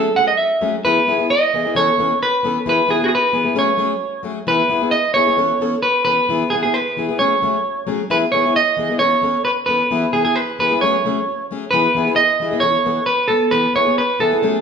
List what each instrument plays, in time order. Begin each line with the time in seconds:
Already playing: clean electric guitar A4
0.16 steel-string acoustic guitar F#3 A3 C#4 G#4, clean electric guitar F#5
0.28 clean electric guitar D#5
0.38 clean electric guitar E5
0.61 steel-string acoustic guitar F#3 A3 C#4 G#4
0.85 steel-string acoustic guitar E3 B3 E4 G#4, clean electric guitar B4
1.07 steel-string acoustic guitar E3 B3 E4 G#4
1.18 steel-string acoustic guitar B3 E4 G#4
1.30 clean electric guitar D#5
1.54 steel-string acoustic guitar E3 B3 E4 G#4
1.65 steel-string acoustic guitar B3 E4 G#4
1.75 steel-string acoustic guitar E3 B3 C#4 A4, clean electric guitar C#5
1.98 steel-string acoustic guitar E3 B3 C#4 A4
2.23 clean electric guitar B4
2.43 steel-string acoustic guitar E3 B3 C#4 A4
2.66 steel-string acoustic guitar E3 B3 E4 G#4, clean electric guitar B4
2.88 steel-string acoustic guitar E3 B3 E4 G#4, clean electric guitar G#4
3.00 steel-string acoustic guitar B3 G#4
3.05 clean electric guitar F#4 G#4
3.15 clean electric guitar B4
3.33 steel-string acoustic guitar E3 B3 G#4
3.45 steel-string acoustic guitar B3 E4 G#4
3.55 steel-string acoustic guitar F#3 A3 C#4 G#4, clean electric guitar C#5
3.77 steel-string acoustic guitar F#3 A3 C#4 G#4
4.23 steel-string acoustic guitar F#3 A3 C#4 G#4
4.47 steel-string acoustic guitar E3 B3 E4 G#4, clean electric guitar B4
4.69 steel-string acoustic guitar E3 B3 E4 G#4
4.81 steel-string acoustic guitar B3 E4 G#4
4.91 clean electric guitar D#5
5.14 steel-string acoustic guitar B3 E4 G#4, clean electric guitar C#5
5.27 steel-string acoustic guitar B3 E4 G#4
5.37 steel-string acoustic guitar E3 B3 C#4 A4
5.60 steel-string acoustic guitar E3 B3 C#4 A4
5.82 clean electric guitar B4
6.05 steel-string acoustic guitar E3 B3 C#4 A4, clean electric guitar B4
6.29 steel-string acoustic guitar E3 B3 E4 G#4
6.50 steel-string acoustic guitar E3 B3 E4, clean electric guitar G#4
6.54 steel-string acoustic guitar G#4
6.63 steel-string acoustic guitar B3 E4 G#4, clean electric guitar G#4
6.74 clean electric guitar B4
6.97 steel-string acoustic guitar E3 B3 E4 G#4
7.09 steel-string acoustic guitar B3 E4 G#4
7.19 steel-string acoustic guitar F#3 A3 C#4 G#4, clean electric guitar C#5
7.41 steel-string acoustic guitar F#3 A3 C#4 G#4
7.87 steel-string acoustic guitar F#3 A3 C#4 G#4
8.10 steel-string acoustic guitar E3 B3 E4 G#4, clean electric guitar B4
8.32 steel-string acoustic guitar E3 B3 E4 G#4, clean electric guitar C#5
8.45 steel-string acoustic guitar B3 E4 G#4
8.56 clean electric guitar D#5
8.77 steel-string acoustic guitar E3 B3 E4 G#4
8.89 steel-string acoustic guitar B3 E4 G#4
8.99 steel-string acoustic guitar E3 B3 C#4 A4, clean electric guitar C#5
9.21 steel-string acoustic guitar E3 B3 C#4 A4
9.45 clean electric guitar B4
9.66 steel-string acoustic guitar E3 B3 C#4 A4, clean electric guitar B4
9.91 steel-string acoustic guitar E3 B3 E4 G#4
10.13 steel-string acoustic guitar E3 B3 G#4, clean electric guitar G#4
10.24 steel-string acoustic guitar B3 E4 G#4, clean electric guitar G#4
10.36 clean electric guitar B4
10.59 steel-string acoustic guitar E3 B3 E4 G#4, clean electric guitar B4
10.71 steel-string acoustic guitar B3 E4 G#4
10.81 steel-string acoustic guitar F#3 A3 C#4 G#4, clean electric guitar C#5
11.05 steel-string acoustic guitar F#3 A3 C#4 G#4
11.51 steel-string acoustic guitar F#3 A3 C#4 G#4
11.71 steel-string acoustic guitar E3 B3 E4 G#4, clean electric guitar B4
11.95 steel-string acoustic guitar E3 B3 E4 G#4
12.07 steel-string acoustic guitar B3 E4 G#4
12.16 clean electric guitar D#5
12.40 steel-string acoustic guitar E3 E4 G#4
12.51 steel-string acoustic guitar B3 E4 G#4
12.60 steel-string acoustic guitar E3 B3 C#4 A4, clean electric guitar C#5
12.85 steel-string acoustic guitar E3 B3 A4, muted steel-string acoustic guitar stroke
13.06 clean electric guitar B4
13.28 steel-string acoustic guitar B3 A4, clean electric guitar A4
13.51 steel-string acoustic guitar E3 B3, clean electric guitar B4, muted steel-string acoustic guitar stroke
13.76 steel-string acoustic guitar B3 E4 G#4, clean electric guitar C#5
13.85 steel-string acoustic guitar B3 G#4, muted steel-string acoustic guitar stroke
13.98 clean electric guitar B4
14.19 steel-string acoustic guitar E3 B3 E4 G#4, clean electric guitar A4
14.31 steel-string acoustic guitar B3 E4 G#4
14.42 steel-string acoustic guitar F#3 A3 C#4 G#4